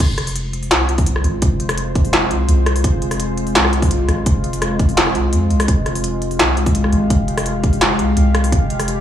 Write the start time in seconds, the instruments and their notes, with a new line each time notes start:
0.00 808-style bass F1, ambient pad G#3 F4 C5, kick
0.18 cross-stick, closed hi-hat
0.27 open hi-hat
0.36 closed hi-hat
0.53 closed hi-hat
0.63 open hi-hat
0.71 808-style bass C2, cross-stick, snare, closed hi-hat
0.89 closed hi-hat
0.98 kick, open hi-hat
1.06 closed hi-hat
1.16 cross-stick
1.24 808-style bass G#1, closed hi-hat
1.42 808-style bass F1, kick, closed hi-hat
1.60 closed hi-hat
1.69 cross-stick, open hi-hat
1.78 closed hi-hat
1.95 kick, closed hi-hat
2.05 open hi-hat
2.13 cross-stick, snare, closed hi-hat
2.31 808-style bass C2, closed hi-hat
2.48 808-style bass C2, closed hi-hat
2.66 cross-stick, closed hi-hat
2.76 open hi-hat
2.84 808-style bass F1, kick, closed hi-hat
3.02 closed hi-hat
3.11 cross-stick, open hi-hat
3.20 closed hi-hat
3.37 closed hi-hat
3.47 open hi-hat
3.55 808-style bass C2, snare, closed hi-hat
3.65 cross-stick
3.73 closed hi-hat
3.82 kick, open hi-hat
3.91 closed hi-hat
4.08 808-style bass G#1, cross-stick, closed hi-hat
4.26 808-style bass F1, kick, closed hi-hat
4.44 closed hi-hat
4.53 open hi-hat
4.62 cross-stick, closed hi-hat
4.79 kick, closed hi-hat
4.89 open hi-hat
4.97 snare, closed hi-hat
5.07 cross-stick
5.15 808-style bass C2, closed hi-hat
5.33 808-style bass F2, closed hi-hat
5.50 808-style bass C2, closed hi-hat
5.60 cross-stick, open hi-hat
5.68 808-style bass F1, ambient pad G4 F5, kick, closed hi-hat
5.86 cross-stick, closed hi-hat
5.95 open hi-hat
6.04 closed hi-hat
6.22 closed hi-hat
6.31 open hi-hat
6.39 808-style bass C2, cross-stick, snare, closed hi-hat
6.57 closed hi-hat
6.66 kick, open hi-hat
6.75 closed hi-hat
6.84 cross-stick
6.93 808-style bass G#1, closed hi-hat
7.10 808-style bass F1, kick, closed hi-hat
7.28 closed hi-hat
7.38 cross-stick, open hi-hat
7.46 closed hi-hat
7.63 kick, closed hi-hat
7.73 open hi-hat
7.81 cross-stick, snare, closed hi-hat
7.99 808-style bass C2, closed hi-hat
8.17 808-style bass C2, closed hi-hat
8.35 cross-stick, closed hi-hat
8.44 open hi-hat
8.52 808-style bass F1, kick, closed hi-hat
8.70 closed hi-hat
8.80 cross-stick, open hi-hat
8.88 closed hi-hat